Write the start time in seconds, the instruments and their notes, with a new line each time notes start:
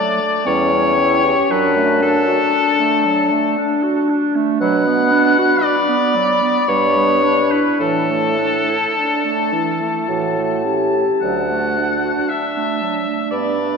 Already playing: clarinet F#3, french horn A3, oboe D5, flute A5
0.21 clarinet A3
0.46 bassoon E2, clarinet G3, french horn C#4, oboe C#5, flute G5
0.72 clarinet C#4
0.99 clarinet E4
1.24 clarinet G4
1.50 bassoon F#2, clarinet F#3, french horn D4, oboe B4, flute A5
1.76 clarinet A3
2.02 clarinet D4, oboe A4
2.28 clarinet F#4
2.54 clarinet D4
2.80 clarinet A3
3.05 clarinet F#3
3.31 clarinet A3
3.58 clarinet D4
3.83 clarinet F#4
4.09 clarinet D4
4.35 clarinet A3
4.61 bassoon B2, clarinet F#3, oboe F#5, flute B5
4.86 clarinet B3
5.12 clarinet D4
5.38 clarinet F#4
5.63 clarinet D4, oboe D5
5.88 clarinet B3
6.15 clarinet F#3
6.42 clarinet B3
6.68 bassoon G2, clarinet G3, french horn D4, oboe C#5
6.97 clarinet B3
7.24 clarinet D4
7.51 clarinet E4, oboe B4
7.80 bassoon A2, clarinet E3, oboe A4, flute A5
8.10 clarinet A3
8.38 clarinet D4
8.69 clarinet E4
8.96 french horn D4, clarinet D4
9.25 clarinet A3
9.52 clarinet E3, french horn E4
9.81 clarinet A3
10.09 bassoon A2, clarinet E3, french horn F#4
10.38 clarinet A3
10.65 clarinet C#4, french horn G4
10.94 clarinet E4
11.22 bassoon D2, clarinet F#3, french horn D4, oboe F#5
11.51 clarinet A3
11.79 clarinet D4
12.05 clarinet F#4
12.29 clarinet D4, oboe E5
12.56 clarinet A3
12.82 clarinet F#3
13.07 clarinet A3
13.31 bassoon G2, clarinet B3, oboe D5, flute B5
13.59 clarinet D4